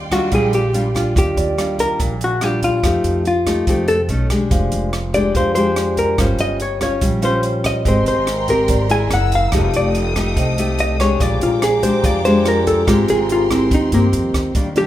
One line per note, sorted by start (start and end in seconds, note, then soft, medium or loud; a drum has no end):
0.00 0.28 D#2 medium
0.00 0.30 D#3 medium
0.00 1.14 D5 medium
0.00 1.13 F5 medium
0.00 1.14 G5 medium
0.00 1.11 C6 medium
0.11 0.29 G3 medium
0.11 0.29 D4 medium
0.11 0.29 F4 medium
0.11 0.32 F#4 medium
0.11 kick soft
0.11 cross-stick medium
0.11 closed hi-hat soft
0.32 1.12 A#1 medium
0.32 1.14 A#2 medium
0.32 0.59 G3 medium
0.32 0.59 D4 medium
0.32 0.60 F4 medium
0.32 0.54 G#4 medium
0.32 kick medium
0.32 closed hi-hat soft
0.53 1.13 G4 medium
0.53 closed hi-hat soft
0.73 0.86 G3 soft
0.73 0.86 D4 medium
0.73 0.86 F4 medium
0.73 closed hi-hat soft
0.95 1.54 G3 soft
0.95 1.54 D4 medium
0.95 1.55 F4 medium
0.95 kick soft
0.95 cross-stick medium
0.95 closed hi-hat soft
1.15 1.35 D#2 medium
1.15 1.97 D#3 medium
1.15 1.76 G4 medium
1.15 kick medium
1.15 closed hi-hat medium
1.37 1.95 D#2 medium
1.37 2.53 D5 medium
1.37 closed hi-hat soft
1.58 2.14 G3 medium
1.58 2.14 D4 medium
1.58 2.14 F4 medium
1.58 cross-stick medium
1.58 closed hi-hat soft
1.79 2.00 A#4 medium
1.79 kick soft
1.79 closed hi-hat soft
1.99 2.79 A#1 medium
1.99 2.81 A#2 medium
1.99 kick medium
1.99 closed hi-hat medium
2.21 2.44 F#4 medium
2.21 closed hi-hat soft
2.41 2.80 G3 medium
2.41 2.80 D4 medium
2.41 2.80 F4 medium
2.41 2.63 G4 medium
2.41 cross-stick medium
2.41 closed hi-hat soft
2.62 3.22 F4 medium
2.62 kick soft
2.62 closed hi-hat soft
2.83 3.03 F2 medium
2.83 3.65 F3 medium
2.83 3.25 A3 medium
2.83 3.26 D#4 medium
2.83 3.25 G4 medium
2.83 kick medium
2.83 cross-stick medium
2.83 closed hi-hat medium
3.04 3.63 F2 medium
3.04 closed hi-hat soft
3.25 3.85 F4 medium
3.25 closed hi-hat soft
3.46 3.64 A3 medium
3.46 3.64 D#4 medium
3.46 3.64 G4 medium
3.46 kick soft
3.46 cross-stick medium
3.46 closed hi-hat soft
3.67 4.06 F2 medium
3.67 4.07 C3 medium
3.67 3.96 A3 medium
3.67 3.96 D#4 medium
3.67 3.96 G4 medium
3.67 kick medium
3.67 closed hi-hat medium
3.88 4.01 A4 medium
3.88 closed hi-hat soft
4.08 4.47 B1 medium
4.08 4.27 A3 medium
4.08 4.27 C#4 medium
4.08 4.27 D#4 medium
4.08 closed hi-hat soft
4.30 4.90 G#3 medium
4.30 4.90 D4 medium
4.30 4.90 G4 medium
4.30 kick soft
4.30 cross-stick medium
4.30 closed hi-hat soft
4.51 4.70 F1 medium
4.51 5.32 F3 medium
4.51 kick medium
4.51 closed hi-hat medium
4.72 5.31 F1 medium
4.72 closed hi-hat soft
4.93 cross-stick medium
4.93 closed hi-hat soft
5.14 5.52 G#3 medium
5.14 5.52 D4 medium
5.14 5.52 G4 medium
5.14 5.34 D5 medium
5.14 kick soft
5.14 closed hi-hat soft
5.35 6.14 F2 medium
5.35 6.16 F3 medium
5.35 5.54 C5 medium
5.35 kick medium
5.35 closed hi-hat medium
5.55 6.15 G#3 medium
5.55 6.15 D4 medium
5.55 6.16 G4 medium
5.55 5.94 C5 medium
5.55 closed hi-hat soft
5.76 6.35 C5 soft
5.76 cross-stick medium
5.76 closed hi-hat soft
5.97 6.18 A#4 medium
5.97 kick soft
5.97 closed hi-hat soft
6.18 6.38 G1 medium
6.18 7.00 G3 medium
6.18 6.60 C#4 medium
6.18 6.60 F4 medium
6.18 6.60 C5 medium
6.18 kick medium
6.18 cross-stick medium
6.18 closed hi-hat medium
6.38 6.97 G1 medium
6.38 6.60 D#5 loud
6.38 closed hi-hat soft
6.60 6.81 C#5 medium
6.60 closed hi-hat soft
6.81 7.19 C#4 medium
6.81 7.19 F4 medium
6.81 7.21 C#5 medium
6.81 kick soft
6.81 cross-stick medium
6.81 closed hi-hat soft
7.01 7.81 A#1 loud
7.01 7.83 G3 soft
7.01 kick medium
7.01 closed hi-hat medium
7.22 7.82 C#4 medium
7.22 7.82 F4 medium
7.22 7.82 C5 medium
7.22 7.44 C5 medium
7.22 closed hi-hat soft
7.43 closed hi-hat soft
7.64 7.85 D#5 medium
7.64 kick soft
7.64 cross-stick medium
7.64 closed hi-hat soft
7.84 8.05 G#1 loud
7.84 8.67 G#3 medium
7.84 8.27 C4 medium
7.84 8.27 G4 medium
7.84 9.50 A#4 medium
7.84 8.27 A#4 medium
7.84 9.01 D#5 medium
7.84 9.09 G5 medium
7.84 9.50 A#5 medium
7.84 9.09 C6 medium
7.84 kick medium
7.84 closed hi-hat medium
7.88 8.07 C5 medium
8.06 8.65 G#1 medium
8.06 8.46 C5 medium
8.06 closed hi-hat soft
8.27 cross-stick medium
8.27 closed hi-hat soft
8.48 8.87 C4 medium
8.48 8.87 G4 medium
8.48 8.87 A#4 medium
8.48 8.69 A#4 medium
8.48 kick soft
8.48 closed hi-hat soft
8.68 9.08 G#1 medium
8.68 9.09 D#3 medium
8.68 9.08 D5 soft
8.68 kick medium
8.68 closed hi-hat medium
8.90 9.49 E4 medium
8.90 9.49 G#4 medium
8.90 9.50 A#4 medium
8.90 9.11 G#5 medium
8.90 closed hi-hat soft
9.09 9.49 F#1 medium
9.09 9.51 F#5 medium
9.09 9.51 E6 medium
9.09 cross-stick medium
9.09 closed hi-hat soft
9.14 9.32 F#5 medium
9.32 9.72 F5 medium
9.32 kick soft
9.32 closed hi-hat soft
9.51 9.72 F1 medium
9.51 10.34 F3 medium
9.51 10.12 A3 soft
9.51 10.12 D#4 medium
9.51 10.13 G4 medium
9.51 11.18 A4 medium
9.51 10.68 A4 soft
9.51 11.18 F5 medium
9.51 11.18 G5 medium
9.51 11.18 D#6 medium
9.51 kick medium
9.51 cross-stick medium
9.51 closed hi-hat medium
9.74 10.32 F1 medium
9.74 9.88 D5 medium
9.74 closed hi-hat soft
9.95 closed hi-hat soft
10.15 10.54 A3 medium
10.15 10.54 D#4 medium
10.15 10.55 G4 medium
10.15 kick soft
10.15 cross-stick medium
10.15 closed hi-hat soft
10.36 11.16 C2 medium
10.36 11.18 C3 medium
10.36 11.16 D#5 medium
10.36 kick medium
10.36 closed hi-hat medium
10.58 10.96 A3 medium
10.58 10.96 D#4 medium
10.58 10.97 G4 medium
10.58 closed hi-hat soft
10.79 10.99 D#5 medium
10.79 closed hi-hat soft
10.99 11.80 G#3 medium
10.99 11.80 D4 medium
10.99 11.80 G4 medium
10.99 11.22 C#5 medium
10.99 kick soft
10.99 cross-stick medium
10.99 closed hi-hat soft
11.20 11.40 A#1 loud
11.20 12.01 A#2 medium
11.20 12.85 C5 medium
11.20 11.41 D5 medium
11.20 14.52 G5 medium
11.20 14.51 A#5 medium
11.20 12.85 D6 medium
11.20 kick medium
11.20 closed hi-hat medium
11.41 12.00 A#1 medium
11.41 11.62 F4 medium
11.41 closed hi-hat soft
11.62 11.83 G#4 medium
11.62 cross-stick medium
11.62 closed hi-hat soft
11.82 12.21 G#3 medium
11.82 12.21 D4 medium
11.82 12.21 G4 medium
11.82 12.98 C5 soft
11.82 12.04 C5 medium
11.82 kick soft
11.82 closed hi-hat soft
12.04 12.83 F2 loud
12.04 12.85 F3 medium
12.04 12.24 D5 medium
12.04 kick medium
12.04 closed hi-hat medium
12.25 12.85 G#3 medium
12.25 12.85 D4 medium
12.25 12.85 G4 medium
12.25 12.45 C5 medium
12.25 closed hi-hat soft
12.45 12.85 F4 soft
12.45 12.67 A#4 medium
12.45 cross-stick medium
12.45 closed hi-hat soft
12.67 12.89 A4 medium
12.67 kick soft
12.67 closed hi-hat soft
12.86 13.07 G#1 loud
12.86 13.69 G#3 medium
12.86 13.47 C4 medium
12.86 14.03 F4 medium
12.86 13.47 G4 medium
12.86 13.08 G4 medium
12.86 13.47 A#4 medium
12.86 14.54 A#4 medium
12.86 14.54 C6 medium
12.86 kick medium
12.86 cross-stick medium
12.86 closed hi-hat medium
13.08 13.67 G#1 medium
13.08 13.29 G#4 medium
13.08 closed hi-hat soft
13.29 13.52 F4 medium
13.29 14.45 G4 soft
13.29 closed hi-hat soft
13.50 13.89 C4 medium
13.50 13.71 E4 medium
13.50 13.89 G4 medium
13.50 13.89 A#4 medium
13.50 kick soft
13.50 cross-stick medium
13.50 closed hi-hat soft
13.71 13.90 D#2 medium
13.71 14.53 D#3 medium
13.71 13.93 D#4 medium
13.71 kick medium
13.71 closed hi-hat medium
13.92 14.11 G2 medium
13.92 14.06 A#3 medium
13.92 14.52 C4 medium
13.92 14.52 G4 medium
13.92 14.53 A#4 medium
13.92 closed hi-hat soft
14.13 14.32 F2 medium
14.13 closed hi-hat soft
14.34 14.53 D#2 medium
14.34 kick soft
14.34 cross-stick medium
14.34 closed hi-hat soft
14.55 14.87 D#2 medium
14.55 14.87 D#3 medium
14.55 14.67 G3 medium
14.55 14.68 A#3 soft
14.55 14.68 D4 medium
14.55 kick medium
14.55 closed hi-hat medium
14.75 14.87 G3 medium
14.75 14.87 A#3 medium
14.75 14.87 D4 soft
14.75 14.87 D4 medium
14.75 14.87 G4 medium
14.75 closed hi-hat soft